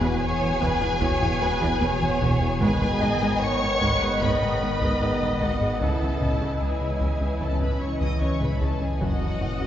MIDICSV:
0, 0, Header, 1, 14, 480
1, 0, Start_track
1, 0, Tempo, 800000
1, 1567, Time_signature, 4, 2, 24, 8
1, 5801, End_track
2, 0, Start_track
2, 0, Title_t, "Violin section"
2, 0, Program_c, 0, 48
2, 0, Note_on_c, 0, 80, 110
2, 1561, Note_off_c, 0, 80, 0
2, 1568, Note_on_c, 0, 80, 116
2, 2038, Note_off_c, 0, 80, 0
2, 2050, Note_on_c, 0, 85, 126
2, 2528, Note_off_c, 0, 85, 0
2, 2531, Note_on_c, 0, 83, 95
2, 3249, Note_off_c, 0, 83, 0
2, 3254, Note_on_c, 0, 78, 74
2, 3486, Note_off_c, 0, 78, 0
2, 3495, Note_on_c, 0, 81, 69
2, 3971, Note_off_c, 0, 81, 0
2, 3976, Note_on_c, 0, 80, 62
2, 4451, Note_off_c, 0, 80, 0
2, 4456, Note_on_c, 0, 81, 68
2, 4572, Note_off_c, 0, 81, 0
2, 4575, Note_on_c, 0, 83, 59
2, 4688, Note_on_c, 0, 85, 63
2, 4689, Note_off_c, 0, 83, 0
2, 4807, Note_off_c, 0, 85, 0
2, 4815, Note_on_c, 0, 87, 63
2, 4929, Note_off_c, 0, 87, 0
2, 4931, Note_on_c, 0, 85, 65
2, 5047, Note_off_c, 0, 85, 0
2, 5059, Note_on_c, 0, 83, 60
2, 5170, Note_on_c, 0, 81, 59
2, 5173, Note_off_c, 0, 83, 0
2, 5289, Note_off_c, 0, 81, 0
2, 5297, Note_on_c, 0, 80, 60
2, 5412, Note_off_c, 0, 80, 0
2, 5414, Note_on_c, 0, 78, 79
2, 5801, Note_off_c, 0, 78, 0
2, 5801, End_track
3, 0, Start_track
3, 0, Title_t, "Viola section"
3, 0, Program_c, 1, 48
3, 0, Note_on_c, 1, 71, 76
3, 130, Note_off_c, 1, 71, 0
3, 130, Note_on_c, 1, 73, 89
3, 364, Note_off_c, 1, 73, 0
3, 371, Note_on_c, 1, 71, 83
3, 609, Note_off_c, 1, 71, 0
3, 611, Note_on_c, 1, 73, 92
3, 844, Note_off_c, 1, 73, 0
3, 850, Note_on_c, 1, 71, 83
3, 1088, Note_on_c, 1, 73, 87
3, 1089, Note_off_c, 1, 71, 0
3, 1568, Note_off_c, 1, 73, 0
3, 1575, Note_on_c, 1, 71, 80
3, 1806, Note_off_c, 1, 71, 0
3, 1813, Note_on_c, 1, 75, 83
3, 2050, Note_off_c, 1, 75, 0
3, 2053, Note_on_c, 1, 73, 83
3, 2285, Note_off_c, 1, 73, 0
3, 2291, Note_on_c, 1, 71, 75
3, 2529, Note_off_c, 1, 71, 0
3, 2535, Note_on_c, 1, 75, 78
3, 2771, Note_off_c, 1, 75, 0
3, 2779, Note_on_c, 1, 75, 83
3, 3479, Note_off_c, 1, 75, 0
3, 3495, Note_on_c, 1, 64, 65
3, 5147, Note_off_c, 1, 64, 0
3, 5408, Note_on_c, 1, 75, 76
3, 5801, Note_off_c, 1, 75, 0
3, 5801, End_track
4, 0, Start_track
4, 0, Title_t, "Violin section"
4, 0, Program_c, 2, 48
4, 0, Note_on_c, 2, 68, 97
4, 1544, Note_off_c, 2, 68, 0
4, 1566, Note_on_c, 2, 68, 92
4, 2037, Note_off_c, 2, 68, 0
4, 2045, Note_on_c, 2, 73, 99
4, 2526, Note_off_c, 2, 73, 0
4, 2526, Note_on_c, 2, 71, 77
4, 3245, Note_on_c, 2, 66, 62
4, 3246, Note_off_c, 2, 71, 0
4, 3486, Note_off_c, 2, 66, 0
4, 3487, Note_on_c, 2, 69, 63
4, 3957, Note_off_c, 2, 69, 0
4, 3962, Note_on_c, 2, 68, 48
4, 4435, Note_off_c, 2, 68, 0
4, 4447, Note_on_c, 2, 69, 55
4, 4564, Note_on_c, 2, 71, 52
4, 4567, Note_off_c, 2, 69, 0
4, 4681, Note_on_c, 2, 73, 58
4, 4683, Note_off_c, 2, 71, 0
4, 4801, Note_on_c, 2, 75, 53
4, 4804, Note_off_c, 2, 73, 0
4, 4922, Note_off_c, 2, 75, 0
4, 4922, Note_on_c, 2, 73, 59
4, 5042, Note_on_c, 2, 71, 52
4, 5045, Note_off_c, 2, 73, 0
4, 5158, Note_on_c, 2, 69, 51
4, 5164, Note_off_c, 2, 71, 0
4, 5283, Note_off_c, 2, 69, 0
4, 5284, Note_on_c, 2, 68, 52
4, 5398, Note_on_c, 2, 66, 67
4, 5406, Note_off_c, 2, 68, 0
4, 5801, Note_off_c, 2, 66, 0
4, 5801, End_track
5, 0, Start_track
5, 0, Title_t, "Grand piano"
5, 0, Program_c, 3, 0
5, 0, Control_c, 3, 64, 127
5, 1579, Control_c, 3, 64, 0
5, 1688, Control_c, 3, 64, 127
5, 1800, Note_on_c, 3, 63, 50
5, 1801, Note_on_c, 3, 75, 75
5, 2530, Note_on_c, 3, 73, 52
5, 3012, Note_off_c, 3, 75, 0
5, 3014, Note_off_c, 3, 63, 0
5, 3021, Note_on_c, 3, 75, 58
5, 3023, Note_on_c, 3, 63, 41
5, 3491, Note_on_c, 3, 64, 42
5, 3498, Control_c, 3, 64, 0
5, 3587, Control_c, 3, 64, 127
5, 3945, Note_off_c, 3, 73, 0
5, 4430, Note_off_c, 3, 75, 0
5, 4431, Note_off_c, 3, 63, 0
5, 4905, Note_off_c, 3, 64, 0
5, 5418, Control_c, 3, 64, 0
5, 5524, Control_c, 3, 64, 127
5, 5801, End_track
6, 0, Start_track
6, 0, Title_t, "Ambient pad"
6, 0, Program_c, 4, 92
6, 0, Note_on_c, 4, 52, 76
6, 0, Note_on_c, 4, 59, 72
6, 0, Note_on_c, 4, 66, 74
6, 0, Note_on_c, 4, 78, 74
6, 1545, Note_off_c, 4, 52, 0
6, 1546, Note_off_c, 4, 78, 0
6, 1547, Note_off_c, 4, 66, 0
6, 1568, Note_on_c, 4, 71, 74
6, 1569, Note_on_c, 4, 51, 77
6, 1570, Note_on_c, 4, 75, 78
6, 3483, Note_on_c, 4, 52, 66
6, 3486, Note_on_c, 4, 61, 68
6, 3488, Note_off_c, 4, 51, 0
6, 3489, Note_off_c, 4, 59, 0
6, 5408, Note_off_c, 4, 71, 0
6, 5409, Note_off_c, 4, 75, 0
6, 5412, Note_on_c, 4, 66, 64
6, 5413, Note_on_c, 4, 78, 63
6, 5801, Note_off_c, 4, 52, 0
6, 5801, Note_off_c, 4, 61, 0
6, 5801, Note_off_c, 4, 66, 0
6, 5801, Note_off_c, 4, 78, 0
6, 5801, End_track
7, 0, Start_track
7, 0, Title_t, "French horn section"
7, 0, Program_c, 5, 60
7, 0, Note_on_c, 5, 59, 81
7, 0, Note_on_c, 5, 66, 65
7, 1542, Note_off_c, 5, 66, 0
7, 1576, Note_on_c, 5, 75, 90
7, 3387, Note_off_c, 5, 59, 0
7, 3489, Note_on_c, 5, 61, 57
7, 5220, Note_off_c, 5, 75, 0
7, 5407, Note_on_c, 5, 66, 61
7, 5801, Note_off_c, 5, 61, 0
7, 5801, Note_off_c, 5, 66, 0
7, 5801, End_track
8, 0, Start_track
8, 0, Title_t, "Synth pluck"
8, 0, Program_c, 6, 84
8, 8, Note_on_c, 6, 52, 94
8, 79, Note_off_c, 6, 52, 0
8, 247, Note_on_c, 6, 59, 68
8, 319, Note_off_c, 6, 59, 0
8, 370, Note_on_c, 6, 52, 103
8, 441, Note_off_c, 6, 52, 0
8, 490, Note_on_c, 6, 64, 69
8, 561, Note_off_c, 6, 64, 0
8, 609, Note_on_c, 6, 52, 95
8, 681, Note_off_c, 6, 52, 0
8, 732, Note_on_c, 6, 64, 72
8, 802, Note_off_c, 6, 64, 0
8, 851, Note_on_c, 6, 56, 68
8, 922, Note_off_c, 6, 56, 0
8, 969, Note_on_c, 6, 52, 94
8, 1041, Note_off_c, 6, 52, 0
8, 1089, Note_on_c, 6, 64, 70
8, 1160, Note_off_c, 6, 64, 0
8, 1209, Note_on_c, 6, 59, 73
8, 1280, Note_off_c, 6, 59, 0
8, 1330, Note_on_c, 6, 52, 96
8, 1401, Note_off_c, 6, 52, 0
8, 1451, Note_on_c, 6, 64, 72
8, 1522, Note_off_c, 6, 64, 0
8, 1568, Note_on_c, 6, 56, 98
8, 1640, Note_off_c, 6, 56, 0
8, 1690, Note_on_c, 6, 68, 73
8, 1761, Note_off_c, 6, 68, 0
8, 1813, Note_on_c, 6, 68, 73
8, 1883, Note_off_c, 6, 68, 0
8, 1935, Note_on_c, 6, 56, 94
8, 2005, Note_off_c, 6, 56, 0
8, 2174, Note_on_c, 6, 63, 64
8, 2244, Note_off_c, 6, 63, 0
8, 2290, Note_on_c, 6, 56, 96
8, 2361, Note_off_c, 6, 56, 0
8, 2411, Note_on_c, 6, 68, 65
8, 2482, Note_off_c, 6, 68, 0
8, 2533, Note_on_c, 6, 56, 93
8, 2603, Note_off_c, 6, 56, 0
8, 2652, Note_on_c, 6, 68, 62
8, 2723, Note_off_c, 6, 68, 0
8, 2774, Note_on_c, 6, 59, 62
8, 2844, Note_off_c, 6, 59, 0
8, 2892, Note_on_c, 6, 56, 89
8, 2963, Note_off_c, 6, 56, 0
8, 3010, Note_on_c, 6, 68, 66
8, 3081, Note_off_c, 6, 68, 0
8, 3131, Note_on_c, 6, 63, 69
8, 3202, Note_off_c, 6, 63, 0
8, 3251, Note_on_c, 6, 56, 79
8, 3322, Note_off_c, 6, 56, 0
8, 3373, Note_on_c, 6, 68, 58
8, 3443, Note_off_c, 6, 68, 0
8, 3490, Note_on_c, 6, 49, 83
8, 3561, Note_off_c, 6, 49, 0
8, 3611, Note_on_c, 6, 61, 57
8, 3682, Note_off_c, 6, 61, 0
8, 3728, Note_on_c, 6, 61, 64
8, 3800, Note_off_c, 6, 61, 0
8, 3849, Note_on_c, 6, 49, 83
8, 3921, Note_off_c, 6, 49, 0
8, 4090, Note_on_c, 6, 56, 57
8, 4161, Note_off_c, 6, 56, 0
8, 4206, Note_on_c, 6, 49, 85
8, 4279, Note_off_c, 6, 49, 0
8, 4326, Note_on_c, 6, 61, 59
8, 4398, Note_off_c, 6, 61, 0
8, 4445, Note_on_c, 6, 49, 83
8, 4518, Note_off_c, 6, 49, 0
8, 4568, Note_on_c, 6, 61, 62
8, 4640, Note_off_c, 6, 61, 0
8, 4687, Note_on_c, 6, 52, 60
8, 4759, Note_off_c, 6, 52, 0
8, 4808, Note_on_c, 6, 49, 83
8, 4880, Note_off_c, 6, 49, 0
8, 4928, Note_on_c, 6, 61, 56
8, 5000, Note_off_c, 6, 61, 0
8, 5048, Note_on_c, 6, 56, 60
8, 5120, Note_off_c, 6, 56, 0
8, 5171, Note_on_c, 6, 49, 76
8, 5242, Note_off_c, 6, 49, 0
8, 5288, Note_on_c, 6, 61, 57
8, 5360, Note_off_c, 6, 61, 0
8, 5406, Note_on_c, 6, 54, 86
8, 5478, Note_off_c, 6, 54, 0
8, 5530, Note_on_c, 6, 64, 59
8, 5601, Note_off_c, 6, 64, 0
8, 5647, Note_on_c, 6, 64, 59
8, 5719, Note_off_c, 6, 64, 0
8, 5771, Note_on_c, 6, 54, 82
8, 5801, Note_off_c, 6, 54, 0
8, 5801, End_track
9, 0, Start_track
9, 0, Title_t, "Trombone section"
9, 0, Program_c, 7, 61
9, 0, Note_on_c, 7, 52, 66
9, 0, Note_on_c, 7, 54, 67
9, 1545, Note_off_c, 7, 54, 0
9, 1546, Note_off_c, 7, 52, 0
9, 1573, Note_on_c, 7, 59, 85
9, 1577, Note_on_c, 7, 51, 87
9, 3468, Note_off_c, 7, 51, 0
9, 3494, Note_on_c, 7, 52, 57
9, 5218, Note_off_c, 7, 59, 0
9, 5413, Note_on_c, 7, 54, 60
9, 5801, Note_off_c, 7, 52, 0
9, 5801, Note_off_c, 7, 54, 0
9, 5801, End_track
10, 0, Start_track
10, 0, Title_t, "Cello section"
10, 0, Program_c, 8, 48
10, 7, Note_on_c, 8, 40, 85
10, 55, Note_off_c, 8, 40, 0
10, 250, Note_on_c, 8, 40, 69
10, 297, Note_off_c, 8, 40, 0
10, 367, Note_on_c, 8, 40, 90
10, 415, Note_off_c, 8, 40, 0
10, 486, Note_on_c, 8, 40, 65
10, 534, Note_off_c, 8, 40, 0
10, 607, Note_on_c, 8, 40, 99
10, 655, Note_off_c, 8, 40, 0
10, 728, Note_on_c, 8, 40, 69
10, 776, Note_off_c, 8, 40, 0
10, 849, Note_on_c, 8, 40, 66
10, 896, Note_off_c, 8, 40, 0
10, 969, Note_on_c, 8, 40, 96
10, 1017, Note_off_c, 8, 40, 0
10, 1087, Note_on_c, 8, 40, 67
10, 1135, Note_off_c, 8, 40, 0
10, 1209, Note_on_c, 8, 40, 64
10, 1256, Note_off_c, 8, 40, 0
10, 1326, Note_on_c, 8, 40, 100
10, 1374, Note_off_c, 8, 40, 0
10, 1449, Note_on_c, 8, 40, 66
10, 1497, Note_off_c, 8, 40, 0
10, 1572, Note_on_c, 8, 44, 94
10, 1619, Note_off_c, 8, 44, 0
10, 1689, Note_on_c, 8, 44, 69
10, 1737, Note_off_c, 8, 44, 0
10, 1810, Note_on_c, 8, 44, 62
10, 1858, Note_off_c, 8, 44, 0
10, 1933, Note_on_c, 8, 44, 91
10, 1980, Note_off_c, 8, 44, 0
10, 2175, Note_on_c, 8, 44, 65
10, 2222, Note_off_c, 8, 44, 0
10, 2291, Note_on_c, 8, 44, 86
10, 2338, Note_off_c, 8, 44, 0
10, 2412, Note_on_c, 8, 44, 62
10, 2459, Note_off_c, 8, 44, 0
10, 2531, Note_on_c, 8, 44, 82
10, 2578, Note_off_c, 8, 44, 0
10, 2652, Note_on_c, 8, 44, 59
10, 2699, Note_off_c, 8, 44, 0
10, 2769, Note_on_c, 8, 44, 57
10, 2817, Note_off_c, 8, 44, 0
10, 2890, Note_on_c, 8, 44, 78
10, 2937, Note_off_c, 8, 44, 0
10, 3008, Note_on_c, 8, 44, 51
10, 3055, Note_off_c, 8, 44, 0
10, 3129, Note_on_c, 8, 44, 46
10, 3177, Note_off_c, 8, 44, 0
10, 3248, Note_on_c, 8, 44, 63
10, 3296, Note_off_c, 8, 44, 0
10, 3368, Note_on_c, 8, 44, 46
10, 3416, Note_off_c, 8, 44, 0
10, 3489, Note_on_c, 8, 49, 61
10, 3537, Note_off_c, 8, 49, 0
10, 3612, Note_on_c, 8, 49, 44
10, 3659, Note_off_c, 8, 49, 0
10, 3729, Note_on_c, 8, 49, 40
10, 3777, Note_off_c, 8, 49, 0
10, 3850, Note_on_c, 8, 49, 56
10, 3898, Note_off_c, 8, 49, 0
10, 4091, Note_on_c, 8, 49, 42
10, 4138, Note_off_c, 8, 49, 0
10, 4211, Note_on_c, 8, 49, 56
10, 4258, Note_off_c, 8, 49, 0
10, 4333, Note_on_c, 8, 49, 39
10, 4380, Note_off_c, 8, 49, 0
10, 4451, Note_on_c, 8, 49, 57
10, 4498, Note_off_c, 8, 49, 0
10, 4572, Note_on_c, 8, 49, 40
10, 4619, Note_off_c, 8, 49, 0
10, 4691, Note_on_c, 8, 49, 39
10, 4738, Note_off_c, 8, 49, 0
10, 4810, Note_on_c, 8, 49, 55
10, 4858, Note_off_c, 8, 49, 0
10, 4932, Note_on_c, 8, 49, 40
10, 4979, Note_off_c, 8, 49, 0
10, 5049, Note_on_c, 8, 49, 38
10, 5097, Note_off_c, 8, 49, 0
10, 5168, Note_on_c, 8, 49, 53
10, 5216, Note_off_c, 8, 49, 0
10, 5291, Note_on_c, 8, 49, 37
10, 5338, Note_off_c, 8, 49, 0
10, 5410, Note_on_c, 8, 42, 63
10, 5458, Note_off_c, 8, 42, 0
10, 5528, Note_on_c, 8, 42, 46
10, 5576, Note_off_c, 8, 42, 0
10, 5648, Note_on_c, 8, 42, 46
10, 5696, Note_off_c, 8, 42, 0
10, 5766, Note_on_c, 8, 42, 64
10, 5801, Note_off_c, 8, 42, 0
10, 5801, End_track
11, 0, Start_track
11, 0, Title_t, "Analog synth bass"
11, 0, Program_c, 10, 38
11, 6, Note_on_c, 10, 40, 101
11, 79, Note_off_c, 10, 40, 0
11, 129, Note_on_c, 10, 40, 68
11, 200, Note_off_c, 10, 40, 0
11, 249, Note_on_c, 10, 52, 72
11, 321, Note_off_c, 10, 52, 0
11, 365, Note_on_c, 10, 40, 97
11, 438, Note_off_c, 10, 40, 0
11, 489, Note_on_c, 10, 40, 69
11, 561, Note_off_c, 10, 40, 0
11, 609, Note_on_c, 10, 40, 96
11, 680, Note_off_c, 10, 40, 0
11, 729, Note_on_c, 10, 40, 72
11, 801, Note_off_c, 10, 40, 0
11, 848, Note_on_c, 10, 40, 70
11, 920, Note_off_c, 10, 40, 0
11, 966, Note_on_c, 10, 40, 94
11, 1039, Note_off_c, 10, 40, 0
11, 1085, Note_on_c, 10, 40, 64
11, 1158, Note_off_c, 10, 40, 0
11, 1205, Note_on_c, 10, 52, 75
11, 1278, Note_off_c, 10, 52, 0
11, 1323, Note_on_c, 10, 40, 96
11, 1396, Note_off_c, 10, 40, 0
11, 1444, Note_on_c, 10, 40, 71
11, 1517, Note_off_c, 10, 40, 0
11, 1564, Note_on_c, 10, 44, 96
11, 1637, Note_off_c, 10, 44, 0
11, 1690, Note_on_c, 10, 44, 70
11, 1761, Note_off_c, 10, 44, 0
11, 1808, Note_on_c, 10, 44, 74
11, 1880, Note_off_c, 10, 44, 0
11, 1930, Note_on_c, 10, 44, 93
11, 2001, Note_off_c, 10, 44, 0
11, 2051, Note_on_c, 10, 44, 67
11, 2122, Note_off_c, 10, 44, 0
11, 2171, Note_on_c, 10, 56, 63
11, 2242, Note_off_c, 10, 56, 0
11, 2289, Note_on_c, 10, 44, 94
11, 2360, Note_off_c, 10, 44, 0
11, 2407, Note_on_c, 10, 44, 63
11, 2479, Note_off_c, 10, 44, 0
11, 2530, Note_on_c, 10, 44, 91
11, 2601, Note_off_c, 10, 44, 0
11, 2649, Note_on_c, 10, 44, 65
11, 2721, Note_off_c, 10, 44, 0
11, 2767, Note_on_c, 10, 44, 62
11, 2839, Note_off_c, 10, 44, 0
11, 2888, Note_on_c, 10, 44, 86
11, 2960, Note_off_c, 10, 44, 0
11, 3008, Note_on_c, 10, 44, 65
11, 3079, Note_off_c, 10, 44, 0
11, 3126, Note_on_c, 10, 56, 67
11, 3199, Note_off_c, 10, 56, 0
11, 3246, Note_on_c, 10, 44, 81
11, 3318, Note_off_c, 10, 44, 0
11, 3367, Note_on_c, 10, 44, 62
11, 3439, Note_off_c, 10, 44, 0
11, 3489, Note_on_c, 10, 37, 83
11, 3561, Note_off_c, 10, 37, 0
11, 3610, Note_on_c, 10, 37, 60
11, 3681, Note_off_c, 10, 37, 0
11, 3732, Note_on_c, 10, 37, 59
11, 3802, Note_off_c, 10, 37, 0
11, 3852, Note_on_c, 10, 37, 80
11, 3923, Note_off_c, 10, 37, 0
11, 3970, Note_on_c, 10, 37, 64
11, 4041, Note_off_c, 10, 37, 0
11, 4087, Note_on_c, 10, 49, 59
11, 4159, Note_off_c, 10, 49, 0
11, 4206, Note_on_c, 10, 37, 76
11, 4279, Note_off_c, 10, 37, 0
11, 4327, Note_on_c, 10, 37, 57
11, 4399, Note_off_c, 10, 37, 0
11, 4446, Note_on_c, 10, 37, 76
11, 4518, Note_off_c, 10, 37, 0
11, 4568, Note_on_c, 10, 37, 56
11, 4640, Note_off_c, 10, 37, 0
11, 4687, Note_on_c, 10, 37, 58
11, 4759, Note_off_c, 10, 37, 0
11, 4807, Note_on_c, 10, 37, 77
11, 4879, Note_off_c, 10, 37, 0
11, 4930, Note_on_c, 10, 37, 54
11, 5001, Note_off_c, 10, 37, 0
11, 5049, Note_on_c, 10, 49, 59
11, 5121, Note_off_c, 10, 49, 0
11, 5166, Note_on_c, 10, 37, 74
11, 5239, Note_off_c, 10, 37, 0
11, 5284, Note_on_c, 10, 37, 57
11, 5357, Note_off_c, 10, 37, 0
11, 5403, Note_on_c, 10, 42, 86
11, 5476, Note_off_c, 10, 42, 0
11, 5526, Note_on_c, 10, 42, 60
11, 5599, Note_off_c, 10, 42, 0
11, 5645, Note_on_c, 10, 42, 64
11, 5718, Note_off_c, 10, 42, 0
11, 5764, Note_on_c, 10, 42, 84
11, 5801, Note_off_c, 10, 42, 0
11, 5801, End_track
12, 0, Start_track
12, 0, Title_t, "Double bass section"
12, 0, Program_c, 11, 48
12, 361, Note_on_c, 11, 28, 89
12, 409, Note_off_c, 11, 28, 0
12, 606, Note_on_c, 11, 28, 92
12, 654, Note_off_c, 11, 28, 0
12, 844, Note_on_c, 11, 28, 64
12, 892, Note_off_c, 11, 28, 0
12, 1086, Note_on_c, 11, 28, 67
12, 1134, Note_off_c, 11, 28, 0
12, 1326, Note_on_c, 11, 28, 96
12, 1374, Note_off_c, 11, 28, 0
12, 1567, Note_on_c, 11, 32, 87
12, 1615, Note_off_c, 11, 32, 0
12, 1808, Note_on_c, 11, 32, 72
12, 1856, Note_off_c, 11, 32, 0
12, 2285, Note_on_c, 11, 32, 81
12, 2333, Note_off_c, 11, 32, 0
12, 2524, Note_on_c, 11, 32, 78
12, 2572, Note_off_c, 11, 32, 0
12, 2768, Note_on_c, 11, 32, 52
12, 2816, Note_off_c, 11, 32, 0
12, 3006, Note_on_c, 11, 32, 50
12, 3054, Note_off_c, 11, 32, 0
12, 3249, Note_on_c, 11, 32, 72
12, 3297, Note_off_c, 11, 32, 0
12, 3487, Note_on_c, 11, 37, 62
12, 3535, Note_off_c, 11, 37, 0
12, 3729, Note_on_c, 11, 37, 44
12, 3776, Note_off_c, 11, 37, 0
12, 4207, Note_on_c, 11, 37, 52
12, 4255, Note_off_c, 11, 37, 0
12, 4447, Note_on_c, 11, 37, 56
12, 4495, Note_off_c, 11, 37, 0
12, 4693, Note_on_c, 11, 37, 36
12, 4739, Note_off_c, 11, 37, 0
12, 4928, Note_on_c, 11, 37, 35
12, 4976, Note_off_c, 11, 37, 0
12, 5164, Note_on_c, 11, 37, 56
12, 5212, Note_off_c, 11, 37, 0
12, 5407, Note_on_c, 11, 30, 64
12, 5455, Note_off_c, 11, 30, 0
12, 5645, Note_on_c, 11, 30, 52
12, 5693, Note_off_c, 11, 30, 0
12, 5801, End_track
13, 0, Start_track
13, 0, Title_t, "Sub bass"
13, 0, Program_c, 12, 38
13, 0, Note_on_c, 12, 28, 76
13, 1571, Note_on_c, 12, 32, 74
13, 1580, Note_off_c, 12, 28, 0
13, 3489, Note_on_c, 12, 37, 65
13, 3498, Note_off_c, 12, 32, 0
13, 5410, Note_on_c, 12, 30, 67
13, 5419, Note_off_c, 12, 37, 0
13, 5801, Note_off_c, 12, 30, 0
13, 5801, End_track
14, 0, Start_track
14, 0, Title_t, "Taiko and cinematic ensemble drums"
14, 369, Note_on_c, 9, 41, 78
14, 429, Note_off_c, 9, 41, 0
14, 607, Note_on_c, 9, 41, 79
14, 667, Note_off_c, 9, 41, 0
14, 729, Note_on_c, 9, 45, 53
14, 789, Note_off_c, 9, 45, 0
14, 970, Note_on_c, 9, 41, 78
14, 1030, Note_off_c, 9, 41, 0
14, 1208, Note_on_c, 9, 45, 54
14, 1268, Note_off_c, 9, 45, 0
14, 1329, Note_on_c, 9, 41, 80
14, 1389, Note_off_c, 9, 41, 0
14, 1568, Note_on_c, 9, 41, 98
14, 1628, Note_off_c, 9, 41, 0
14, 1808, Note_on_c, 9, 45, 59
14, 1868, Note_off_c, 9, 45, 0
14, 2288, Note_on_c, 9, 41, 84
14, 2348, Note_off_c, 9, 41, 0
14, 2530, Note_on_c, 9, 41, 76
14, 2590, Note_off_c, 9, 41, 0
14, 2651, Note_on_c, 9, 45, 51
14, 2711, Note_off_c, 9, 45, 0
14, 2889, Note_on_c, 9, 41, 76
14, 2949, Note_off_c, 9, 41, 0
14, 3131, Note_on_c, 9, 45, 49
14, 3191, Note_off_c, 9, 45, 0
14, 3251, Note_on_c, 9, 41, 72
14, 3311, Note_off_c, 9, 41, 0
14, 3489, Note_on_c, 9, 41, 94
14, 3549, Note_off_c, 9, 41, 0
14, 3729, Note_on_c, 9, 45, 54
14, 3789, Note_off_c, 9, 45, 0
14, 4207, Note_on_c, 9, 41, 73
14, 4267, Note_off_c, 9, 41, 0
14, 4446, Note_on_c, 9, 41, 65
14, 4506, Note_off_c, 9, 41, 0
14, 4566, Note_on_c, 9, 45, 45
14, 4626, Note_off_c, 9, 45, 0
14, 4807, Note_on_c, 9, 41, 69
14, 4867, Note_off_c, 9, 41, 0
14, 5045, Note_on_c, 9, 45, 46
14, 5105, Note_off_c, 9, 45, 0
14, 5166, Note_on_c, 9, 41, 63
14, 5226, Note_off_c, 9, 41, 0
14, 5407, Note_on_c, 9, 41, 89
14, 5467, Note_off_c, 9, 41, 0
14, 5647, Note_on_c, 9, 45, 52
14, 5707, Note_off_c, 9, 45, 0
14, 5801, End_track
0, 0, End_of_file